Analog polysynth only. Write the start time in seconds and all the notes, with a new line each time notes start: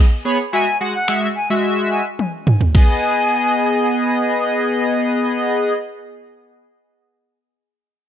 0.25 B3 G#4 C#5
0.53 G#3 F#4 E5
0.81 G#3 F#4 F#5
1.08 G#3 F#4 E5
1.50 G#3 F#4 E5
2.75 B3 G#4 D#5